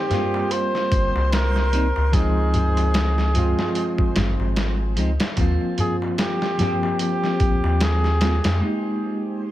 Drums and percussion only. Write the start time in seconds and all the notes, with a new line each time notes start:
0.11 snare, closed hi-hat, darbuka dum
0.34 darbuka tek
0.51 closed hi-hat, darbuka tek
0.75 snare, darbuka tek
0.92 kick, closed hi-hat
1.16 darbuka tek
1.32 snare, closed hi-hat, darbuka tek
1.55 snare, darbuka tek
1.73 closed hi-hat
1.96 darbuka tek
2.13 kick, closed hi-hat, darbuka tek
2.38 darbuka tek
2.54 closed hi-hat, darbuka dum
2.77 closed hi-hat, darbuka tek
2.94 snare, closed hi-hat, darbuka tek
3.18 snare, darbuka tek
3.35 closed hi-hat, darbuka dum
3.59 snare, darbuka tek
3.75 closed hi-hat, darbuka tek
3.98 kick, darbuka tek
4.16 snare, closed hi-hat, darbuka dum
4.40 darbuka tek
4.56 snare, closed hi-hat, darbuka tek
4.81 darbuka tek
4.97 closed hi-hat
5.20 snare, closed hi-hat, darbuka tek
5.37 kick, closed hi-hat, darbuka tek
5.61 darbuka tek
5.78 closed hi-hat, darbuka dum
6.02 darbuka tek
6.18 snare, closed hi-hat, darbuka tek
6.42 snare, darbuka tek
6.59 snare, closed hi-hat, darbuka dum
6.83 darbuka tek
6.99 closed hi-hat, darbuka tek
7.23 snare, darbuka tek
7.40 kick, closed hi-hat
7.64 darbuka tek
7.81 snare, closed hi-hat, darbuka tek
8.04 snare, darbuka tek
8.21 snare, closed hi-hat
8.44 snare, closed hi-hat, darbuka tek